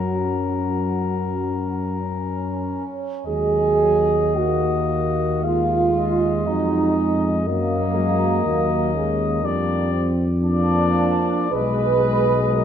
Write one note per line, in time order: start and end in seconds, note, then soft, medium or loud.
0.00 2.88 F#2 soft
0.00 1.99 F#3 soft
0.00 2.85 C#4 soft
0.00 1.94 F#4 soft
0.00 2.85 A#4 soft
2.00 3.23 C#4 soft
3.26 6.47 D#2 soft
3.26 4.38 F#3 soft
3.26 3.84 G#3 soft
3.26 4.34 G#4 medium
3.26 5.45 D#5 soft
3.83 4.37 F#3 soft
4.35 5.42 A#3 soft
4.35 5.45 A#3 soft
4.35 5.43 F#4 medium
5.43 6.46 G#3 soft
5.43 5.96 A#3 soft
5.43 6.47 F4 medium
5.43 5.96 F5 soft
5.95 7.46 G#3 soft
5.95 7.45 D#5 soft
6.46 7.48 F2 soft
6.46 6.96 F#3 soft
6.46 7.30 D#4 medium
6.96 7.49 G#3 soft
7.46 8.45 F#2 medium
7.46 7.99 F#3 soft
7.46 9.88 A#3 medium
7.46 7.98 A#3 medium
7.46 9.46 D#5 soft
7.96 8.46 F#3 soft
7.96 8.45 G#3 soft
8.46 9.44 D#2 soft
8.46 8.95 F#3 soft
8.46 8.96 A#3 soft
8.95 9.42 G#3 medium
8.95 9.44 C#4 medium
9.42 11.36 F2 medium
9.42 10.13 G3 soft
9.42 9.93 D4 medium
9.42 10.15 D5 soft
9.92 10.24 C4 medium
10.41 11.49 F3 medium
10.41 11.54 A#3 medium
10.41 11.49 D4 medium
10.41 11.50 D5 soft
11.51 12.64 B1 medium
11.51 12.64 G#3 medium
11.51 12.56 G#3 medium
11.51 12.51 B4 medium
11.51 12.64 D#5 soft
12.54 12.64 F#3 medium
12.54 12.64 A#4 medium